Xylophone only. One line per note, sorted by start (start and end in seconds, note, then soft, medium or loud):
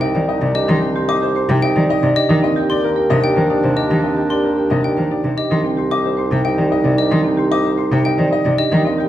0.01 0.19 G5 medium
0.55 0.73 D#5 medium
1.09 1.26 D6 medium
1.62 1.80 G5 medium
2.16 2.33 D#5 medium
2.70 2.87 C6 medium
3.24 3.41 G5 medium
3.77 3.94 D#5 medium
4.30 4.48 C6 medium
4.84 5.01 G5 medium
5.38 5.55 D#5 medium
5.91 6.09 D6 medium
6.45 6.62 G5 medium
6.98 7.16 D#5 medium
7.52 7.69 D6 medium
8.05 8.23 G5 medium
8.58 8.76 D#5 medium